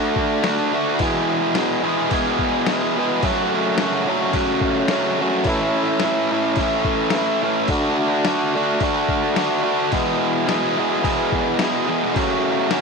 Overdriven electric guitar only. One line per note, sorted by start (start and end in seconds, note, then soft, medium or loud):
0.00 0.42 D3 medium
0.00 0.42 A3 loud
0.00 0.43 D4 loud
0.00 0.43 F#4 loud
0.43 0.72 D3 medium
0.43 0.73 A3 medium
0.43 0.73 D4 loud
0.43 0.74 F#4 medium
0.73 0.98 D3 medium
0.73 0.99 A3 medium
0.73 0.99 D4 medium
0.73 1.00 F#4 loud
0.99 1.54 E2 medium
0.99 1.55 B2 loud
0.99 1.56 E3 loud
0.99 1.57 G#3 loud
0.99 1.58 B3 loud
0.99 1.58 G#4 loud
1.55 1.81 E2 medium
1.55 1.82 B2 loud
1.55 1.82 E3 medium
1.55 1.83 G#3 loud
1.55 1.83 B3 loud
1.55 1.84 G#4 loud
1.82 2.09 E2 medium
1.82 2.09 B2 medium
1.82 2.10 E3 medium
1.82 2.11 G#3 medium
1.82 2.11 B3 medium
1.82 2.12 G#4 loud
2.10 2.65 E2 medium
2.10 2.67 B2 loud
2.10 2.67 E3 loud
2.10 2.67 G#3 loud
2.10 2.69 B3 loud
2.10 2.69 G#4 loud
2.66 2.95 E2 medium
2.66 2.95 B2 medium
2.66 2.97 E3 medium
2.66 2.97 G#3 medium
2.66 2.98 B3 medium
2.66 2.98 G#4 loud
2.96 3.21 E2 medium
2.96 3.22 B2 medium
2.96 3.23 E3 medium
2.96 3.23 G#3 medium
2.96 3.23 B3 loud
2.96 3.23 G#4 loud
3.22 3.77 F#2 loud
3.22 3.78 C#3 loud
3.22 3.79 F#3 loud
3.22 3.80 A3 loud
3.22 3.81 C#4 loud
3.22 3.81 F#4 loud
3.79 4.05 F#2 medium
3.79 4.07 C#3 medium
3.79 4.07 F#3 medium
3.79 4.09 A3 medium
3.79 4.08 C#4 medium
3.79 4.08 F#4 medium
4.06 4.32 F#2 medium
4.06 4.34 C#3 medium
4.06 4.34 F#3 medium
4.06 4.35 A3 loud
4.06 4.35 C#4 loud
4.06 4.35 F#4 loud
4.33 4.88 F#2 loud
4.33 4.89 C#3 loud
4.33 4.90 F#3 loud
4.33 4.91 A3 loud
4.33 4.91 C#4 loud
4.33 4.91 F#4 loud
4.89 5.18 F#2 medium
4.89 5.19 C#3 medium
4.89 5.20 F#3 medium
4.89 5.21 A3 medium
4.89 5.21 C#4 medium
4.89 5.22 F#4 loud
5.19 5.45 F#2 medium
5.19 5.46 C#3 medium
5.19 5.46 F#3 medium
5.19 5.47 A3 medium
5.19 5.46 C#4 medium
5.19 5.47 F#4 medium
5.46 6.02 A2 loud
5.46 6.02 E3 loud
5.46 6.04 A3 loud
5.46 6.03 C#4 loud
5.46 6.04 E4 loud
6.03 6.30 A2 medium
6.03 6.30 E3 medium
6.03 6.32 A3 loud
6.03 6.32 C#4 medium
6.03 6.32 E4 medium
6.31 6.58 A2 medium
6.31 6.59 E3 medium
6.31 6.59 A3 medium
6.31 6.60 C#4 loud
6.31 6.61 E4 medium
6.59 7.13 A2 medium
6.59 7.14 E3 loud
6.59 7.15 A3 loud
6.59 7.17 C#4 loud
6.59 7.16 E4 loud
7.15 7.40 A2 medium
7.15 7.41 E3 medium
7.15 7.42 A3 medium
7.15 7.42 C#4 medium
7.15 7.43 E4 loud
7.41 7.68 A2 medium
7.41 7.69 E3 medium
7.41 7.68 A3 medium
7.41 7.69 C#4 medium
7.41 7.70 E4 loud
7.69 8.24 D3 loud
7.69 8.24 A3 medium
7.69 8.25 D4 loud
7.69 8.27 F#4 loud
8.25 8.53 D3 medium
8.25 8.54 A3 medium
8.25 8.55 D4 loud
8.25 8.56 F#4 loud
8.54 8.80 D3 medium
8.54 8.80 A3 loud
8.54 8.82 D4 loud
8.54 8.82 F#4 loud
8.81 9.35 D3 loud
8.81 9.35 A3 loud
8.81 9.36 D4 loud
8.81 9.37 F#4 loud
9.36 9.61 D3 medium
9.36 9.62 A3 medium
9.36 9.63 D4 medium
9.36 9.63 F#4 medium
9.62 9.90 D3 medium
9.62 9.91 A3 loud
9.62 9.91 D4 medium
9.62 9.91 F#4 loud
9.91 10.45 E2 loud
9.91 10.46 B2 loud
9.91 10.47 E3 loud
9.91 10.47 G#3 loud
9.91 10.48 B3 loud
9.91 10.49 G#4 loud
10.47 10.76 E2 medium
10.47 10.76 B2 medium
10.47 10.77 E3 loud
10.47 10.78 G#3 loud
10.47 10.79 B3 loud
10.47 10.79 G#4 loud
10.77 11.02 E2 medium
10.77 11.02 B2 medium
10.77 11.03 E3 medium
10.77 11.04 G#3 loud
10.77 11.04 B3 loud
10.77 11.04 G#4 loud
11.03 11.60 E2 loud
11.03 11.59 B2 loud
11.03 11.61 E3 loud
11.03 11.61 G#3 loud
11.03 11.63 B3 loud
11.03 11.63 G#4 loud
11.61 11.85 E2 medium
11.61 11.86 B2 medium
11.61 11.87 E3 medium
11.61 11.88 G#3 medium
11.61 11.88 B3 medium
11.61 11.89 G#4 loud
11.86 12.13 E2 medium
11.86 12.14 B2 medium
11.86 12.15 E3 medium
11.86 12.15 G#3 medium
11.86 12.15 B3 loud
11.86 12.15 G#4 medium
12.13 12.70 F#2 loud
12.13 12.71 C#3 loud
12.13 12.71 F#3 loud
12.13 12.72 A3 loud
12.13 12.72 C#4 loud
12.18 12.73 F#4 loud
12.71 12.81 F#2 medium
12.71 12.81 C#3 medium
12.71 12.81 F#3 medium
12.71 12.81 A3 medium
12.71 12.81 C#4 loud
12.71 12.81 F#4 loud